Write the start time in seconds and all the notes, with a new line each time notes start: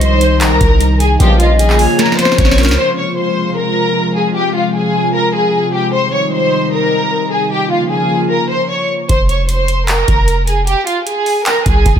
Already playing: C2 C3 D#3 G3 D#4 D#5
0.01 C5 C6, closed hi-hat
0.21 C5, closed hi-hat
0.41 A#1 A#4 A#5, clap, closed hi-hat
0.51 C2
0.61 C2, kick, closed hi-hat
0.81 closed hi-hat
1.00 G#4 G#5, closed hi-hat
1.20 A#1 C#2 A#2 C#3 F3 A#3 F4 G4 G5, closed hi-hat
1.40 F4 D#5 F5, closed hi-hat
1.59 G#4 G#5, closed hi-hat
1.70 clap
1.79 C#5, open hi-hat
1.99 A#4 A#5, snare, closed hi-hat
2.06 snare
2.12 snare
2.18 C5 C6, snare, closed hi-hat
2.25 snare
2.32 snare
2.38 A#1 C#5 C#6, kick, snare, closed hi-hat
2.45 snare
2.51 snare
2.58 A#4, snare, closed hi-hat
2.63 snare, closed hi-hat
2.69 C#2, snare, closed hi-hat
2.73 closed hi-hat
2.78 C3 F3 G#3 F4 C5 C6
2.97 C#5 C#6
3.17 C5 C6
3.56 A#4 A#5
4.15 G#4 G#5
4.35 G4 G5
4.55 F4 F5
4.74 G#4 G#5
5.14 A#4 A#5
5.34 G#4 G#5
5.73 G4 G5
5.93 D#3 G3 D#4 C5 C6
6.13 C#5 C#6
6.33 C5 C6
6.73 A#4 A#5
7.32 G#4 G#5
7.51 C#3 F3 A#3 F4 G4 G5
7.71 F4 F5
7.91 G#4 G#5
8.30 A#4 A#5
8.50 C5 C6
8.70 C#5 C#6
9.09 F1 C5 C6, kick, closed hi-hat
9.29 C#5 C#6, closed hi-hat
9.49 C5 C6, closed hi-hat
9.68 closed hi-hat
9.88 A#4 A#5, clap, closed hi-hat
10.08 F1, kick, closed hi-hat
10.28 closed hi-hat
10.47 G#4 G#5, closed hi-hat
10.67 G4 G5, closed hi-hat
10.87 F4 F5, closed hi-hat
11.06 G#4 G#5, closed hi-hat
11.26 open hi-hat
11.45 A#4 A#5, clap, closed hi-hat
11.66 C2 G#4 G#5, kick, closed hi-hat
11.86 F1, kick, closed hi-hat
11.96 F1, kick